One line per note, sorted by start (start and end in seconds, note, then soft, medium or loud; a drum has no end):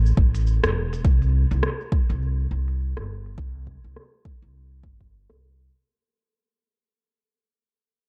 0.00 0.14 A1 medium
0.06 cabasa soft
0.17 0.58 A1 medium
0.17 kick loud
0.35 open hi-hat medium
0.35 cabasa medium
0.47 cabasa medium
0.64 1.01 E1 medium
0.64 cross-stick medium
0.64 open hi-hat soft
0.64 cabasa soft
0.93 open hi-hat medium
0.93 cabasa medium
1.05 1.46 C2 medium
1.05 kick loud
1.05 cabasa medium
1.22 open hi-hat soft
1.22 cabasa soft
1.51 1.61 C2 medium
1.51 open hi-hat soft
1.51 cabasa medium
1.63 cross-stick medium
1.63 cabasa medium
1.81 cabasa soft
1.92 kick loud
2.10 2.47 C2 medium
2.10 open hi-hat soft
2.10 cabasa medium
2.22 cabasa medium
2.39 cabasa soft
2.51 2.92 C2 medium
2.68 open hi-hat soft
2.68 cabasa medium
2.80 cabasa medium
2.97 3.34 G1 medium
2.97 cross-stick medium
2.97 open hi-hat soft
2.97 cabasa soft
3.26 open hi-hat soft
3.26 cabasa medium
3.38 3.79 C2 medium
3.38 kick loud
3.55 open hi-hat soft
3.67 kick medium
3.84 3.94 C2 medium
3.84 open hi-hat soft
3.84 cabasa medium
3.96 cross-stick medium
3.96 cabasa soft
4.14 open hi-hat soft
4.25 kick medium
4.42 4.80 C2 medium
4.42 open hi-hat soft
4.83 5.24 G1 medium
4.83 kick medium
5.01 kick soft
5.30 5.67 C2 medium
5.30 cross-stick medium